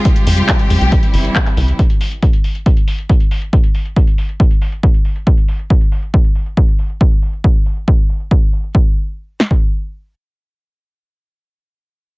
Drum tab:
HH |xxoxxxoxxxoxxxox|xxoxxxoxxxoxxxox|xxoxxxoxxxoxxxox|xxoxxxoxxxoxxxox|
CP |----x-------xx--|----------------|----------------|----------------|
SD |----------------|----------------|----------------|----------------|
BD |o---o---o---o---|o---o---o---o---|o---o---o---o---|o---o---o---o---|

HH |-xox-xox-xox--ox|----------------|----------------|
CP |----------------|----------------|----------------|
SD |----------------|------o---------|----------------|
BD |o---o---o---o---|o------o--------|----------------|